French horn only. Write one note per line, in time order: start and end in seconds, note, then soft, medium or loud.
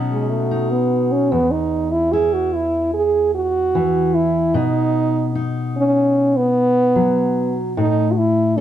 0.11 0.32 G#3 medium
0.30 0.72 A3 medium
0.71 1.13 B3 medium
1.12 1.33 C#4 medium
1.32 1.53 B3 medium
1.51 1.93 D#4 medium
1.92 2.14 E4 medium
2.12 2.35 G#4 loud
2.33 2.56 F#4 medium
2.54 2.93 E4 medium
2.94 3.31 G#4 medium
3.35 4.16 F#4 loud
4.14 4.57 E4 medium
4.56 5.49 D#4 loud
5.76 6.38 C#4 medium
6.37 7.57 B3 loud
7.78 8.13 D#4 loud
8.12 8.19 F#4 medium
8.18 8.59 E4 medium
8.57 8.61 C#4 medium